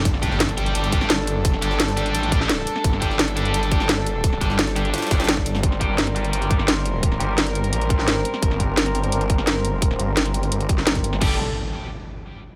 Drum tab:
CC |--------------------------------|--------------------------------|--------------------------------|--------------------------------|
HH |x---x---x-x-x-x-x-x-x---x---x---|x---x---x-x-x-x-x-x-x---x---x---|x---x---x-x-x-x-x-x-x---x---x---|x---x---x-x-x-x-xxxxx-xxx---x---|
SD |--o---o-o-o-----------o-o-------|--o---o-o-o-----------o-o-----o-|--o---o-o-o-----------o-o-------|--o---o-o-o-----ooooo-ooo-----o-|
BD |o---o---------------o-----------|o-------------------o-----------|o---o---------------o-----------|o---o---------------o-----o-----|

CC |--------------------------------|--------------------------------|--------------------------------|--------------------------------|
HH |x---x---x-x-x-x-x-x-x---x---x---|x---x---x-x-x-x-x-x-x---x---x---|x---x---x-x-x-x-x-x-x---x---x---|x---x---x-x-x-x-x-x-x---x-x-x---|
SD |--o-----o-o-----------o-o-------|--o-----o-------------o-o-----o-|--o-----o-o-----------o-o-------|--o-----o-o-----------o-o-----o-|
BD |o---o---------------o-----------|o-------------------o-----------|o---o---------------o-----------|o-------------------o-----o-----|

CC |x-------------------------------|
HH |--------------------------------|
SD |--------------------------------|
BD |o-------------------------------|